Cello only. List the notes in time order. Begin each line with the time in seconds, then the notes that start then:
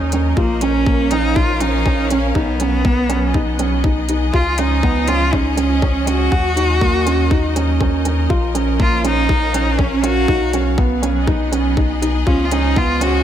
0.37 A#3
0.61 C#4
1.11 D#4
1.36 F4
1.60 D#4
2.10 C#4
2.35 B3
4.33 F4
4.58 D#4
5.08 F4
5.34 C#4
6.08 F#4
8.81 F4
9.06 D#4
9.79 C#4
10.04 F#4
12.27 C#4
12.45 F4
12.52 D#4
12.77 F4
13.02 F#4